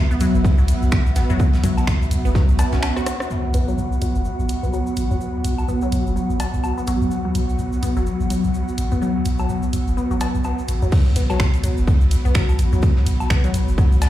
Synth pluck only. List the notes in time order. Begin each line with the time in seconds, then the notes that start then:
0.11 B3
0.21 F#3
0.58 F#3
1.16 B3
1.30 F#3
1.64 F#3
2.25 B3
2.35 F#3
2.59 B3
2.73 C#4
2.83 C#4
2.97 F#4
3.54 B3
3.68 F#3
4.02 F#3
4.63 B3
4.73 F#3
5.11 F#3
5.68 B3
5.82 F#3
6.16 F#3
6.78 B3
6.87 F#3
7.25 F#3
7.83 B3
7.97 F#3
8.30 F#3
8.92 B3
9.02 F#3
9.39 F#3
9.97 B3
10.11 F#3
10.21 B3
10.45 B3
10.82 F#3
11.16 B3
11.30 F#3
11.64 F#3
12.25 B3
12.35 F#3
12.73 F#3
13.30 B3
13.44 F#3
13.78 F#3